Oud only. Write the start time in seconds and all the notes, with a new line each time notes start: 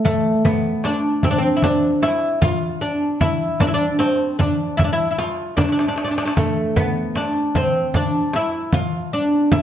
0.05 A3
0.45 B3
0.85 D4
1.24 C4
1.30 D4
1.38 C4
1.56 E4
1.64 D4
2.02 E4
2.42 F4
2.81 D4
3.21 E4
3.61 D4
3.67 E4
3.74 D4
3.99 C4
4.39 D4
4.77 E4
4.84 D4
4.93 E4
5.11 E4
5.18 F4
5.57 D4
5.64 D4
5.72 D4
5.80 D4
5.88 D4
5.96 D4
6.04 D4
6.11 D4
6.18 D4
6.25 D4
6.38 A3
6.77 B3
7.17 D4
7.56 C4
7.96 D4
8.36 E4
8.74 F4
9.13 D4
9.52 E4